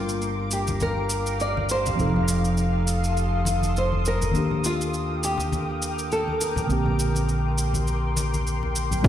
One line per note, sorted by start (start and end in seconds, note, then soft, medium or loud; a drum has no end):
0.00 1.96 G1 medium
0.00 1.94 G3 medium
0.00 1.95 D4 medium
0.00 0.48 F4 medium
0.00 1.96 F4 medium
0.00 1.97 G4 medium
0.00 1.97 A#4 medium
0.00 4.30 F5 medium
0.00 1.96 A#5 medium
0.00 1.95 D6 medium
0.09 cabasa soft
0.22 cabasa soft
0.51 0.83 G4 medium
0.51 cabasa medium
0.67 high conga medium
0.67 cabasa soft
0.80 1.41 A#4 medium
0.80 high conga medium
0.80 cabasa soft
1.10 cabasa medium
1.26 cabasa soft
1.40 1.68 D5 medium
1.40 cabasa soft
1.57 high conga medium
1.69 2.55 C5 medium
1.69 cabasa medium
1.86 muted conga soft
1.86 high conga medium
1.86 low conga medium
1.86 cabasa soft
1.96 4.32 F1 medium
1.96 4.29 F3 medium
1.96 4.30 C4 medium
1.96 4.32 A4 medium
1.96 4.32 C6 medium
1.96 6.66 D#6 medium
1.96 cabasa soft
2.00 4.31 D#4 medium
2.00 4.32 A4 medium
2.16 low conga medium
2.28 cabasa medium
2.45 cabasa soft
2.57 cabasa soft
2.87 cabasa medium
3.04 cabasa soft
3.17 cabasa soft
3.45 muted conga soft
3.45 high conga soft
3.45 cabasa medium
3.62 high conga soft
3.62 cabasa soft
3.77 4.07 C5 medium
3.77 cabasa soft
3.92 high conga medium
4.05 4.67 A#4 loud
4.05 cabasa medium
4.21 low conga medium
4.21 cabasa soft
4.31 6.67 D#2 medium
4.31 6.65 D#3 medium
4.31 6.66 A#3 medium
4.31 9.00 A#4 medium
4.31 9.00 G5 medium
4.31 9.00 D6 medium
4.31 cabasa soft
4.36 6.67 D4 medium
4.36 6.68 G4 medium
4.51 low conga medium
4.64 5.25 F4 medium
4.64 cabasa medium
4.81 cabasa soft
4.94 cabasa soft
5.23 6.12 G4 medium
5.23 cabasa medium
5.38 high conga medium
5.38 cabasa soft
5.52 high conga medium
5.52 cabasa soft
5.82 cabasa medium
5.99 cabasa soft
6.12 6.41 A4 medium
6.12 cabasa soft
6.28 high conga soft
6.41 8.43 A#4 medium
6.41 cabasa medium
6.56 muted conga soft
6.56 high conga medium
6.56 low conga medium
6.56 cabasa soft
6.67 9.02 A#1 medium
6.67 9.00 D3 medium
6.67 9.01 A#3 medium
6.67 9.02 C6 medium
6.67 cabasa soft
6.71 9.02 C4 medium
6.71 9.03 G4 medium
6.86 low conga medium
6.99 cabasa medium
7.15 muted conga soft
7.15 cabasa soft
7.29 cabasa soft
7.58 cabasa medium
7.74 high conga medium
7.74 cabasa soft
7.87 cabasa soft
8.16 muted conga soft
8.16 high conga medium
8.16 cabasa medium
8.34 high conga soft
8.34 cabasa soft
8.47 cabasa soft
8.63 high conga medium
8.76 cabasa medium
8.91 low conga medium
8.91 cabasa soft
9.03 9.08 G1 loud
9.03 9.08 G3 medium
9.03 9.08 D4 medium
9.03 9.08 F4 medium
9.03 kick loud
9.03 cabasa soft